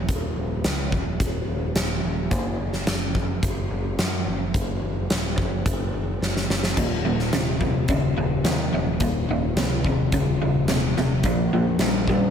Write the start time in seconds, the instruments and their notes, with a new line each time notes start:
0.08 picked electric bass D#1, kick, closed hi-hat
0.37 picked electric bass D#1
0.64 picked electric bass C#2, snare, closed hi-hat
0.92 picked electric bass D#1, kick
1.20 picked electric bass D#1, kick, closed hi-hat
1.47 picked electric bass D#1
1.75 picked electric bass D#1, snare, closed hi-hat
2.03 picked electric bass D#1
2.31 picked electric bass F#1, kick, closed hi-hat
2.60 picked electric bass F#1
2.73 snare
2.87 picked electric bass F#1, snare, closed hi-hat
3.14 picked electric bass F#1, kick
3.43 picked electric bass F#1, kick, closed hi-hat
3.70 picked electric bass F#1
3.98 picked electric bass F#2, snare, closed hi-hat
4.26 picked electric bass F#1
4.54 picked electric bass F#1, kick, closed hi-hat
4.82 picked electric bass F#1
5.10 picked electric bass D#1, snare, closed hi-hat
5.38 picked electric bass F#1, kick
5.66 picked electric bass F#1, kick, closed hi-hat
5.93 picked electric bass F#1
6.21 picked electric bass F#1, snare
6.37 snare
6.49 picked electric bass F#1, snare
6.64 snare
6.77 picked electric bass D#1, overdriven electric guitar D#2 A#2, kick, closed hi-hat, crash
7.05 picked electric bass D#1, overdriven electric guitar D#2 A#2
7.19 snare
7.33 picked electric bass D#1, overdriven electric guitar D#2 C3, snare, closed hi-hat
7.60 picked electric bass D#1, overdriven electric guitar D#2 C3, kick
7.88 picked electric bass D#1, overdriven electric guitar D#2 C#3, kick, closed hi-hat
8.16 picked electric bass D#1, overdriven electric guitar D#2 C#3
8.44 picked electric bass D#2, overdriven electric guitar D#2 C3, snare, closed hi-hat
8.72 picked electric bass D#1, overdriven electric guitar D#2 C3
9.00 picked electric bass D#1, overdriven electric guitar D#2 A#2, kick, closed hi-hat
9.28 picked electric bass D#1, overdriven electric guitar D#2 A#2
9.57 picked electric bass C#2, overdriven electric guitar D#2 C3, snare, closed hi-hat
9.84 picked electric bass D#1, overdriven electric guitar D#2 C3, kick
10.12 picked electric bass D#1, overdriven electric guitar D#2 C#3, kick, closed hi-hat
10.41 picked electric bass D#1, overdriven electric guitar D#2 C#3
10.68 picked electric bass D#1, overdriven electric guitar D#2 C3, snare, closed hi-hat
10.97 picked electric bass D#1, overdriven electric guitar D#2 C3, snare
11.23 picked electric bass A#1, overdriven electric guitar A#2 F3, kick, closed hi-hat
11.52 picked electric bass A#1, overdriven electric guitar A#2 F3
11.79 picked electric bass A#1, overdriven electric guitar A#2 G3, snare, closed hi-hat
12.07 picked electric bass A#1, overdriven electric guitar A#2 G3, kick